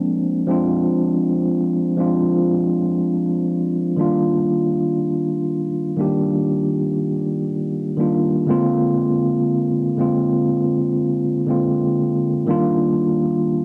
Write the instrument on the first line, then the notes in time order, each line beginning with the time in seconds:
tine electric piano
Already playing: F3 G#3 A#3 C4 D4
0.47 F3 G#3 C4 D4
0.51 F4
1.97 F3 G#3 C4 D4 F4
3.97 D#3 G3 A#3 D4
4.01 F4
5.97 D#3 G3 A#3 D4
6.01 G4
7.97 D#3 G3 A#3 D4
8.01 F4
8.47 D3 G#3 A#3 C4
8.51 F4
9.97 D3 G#3 A#3 C4
10.01 F4
11.47 D3 G#3 A#3 C4
11.51 F4
12.47 D#3 G3 A#3 D4 F4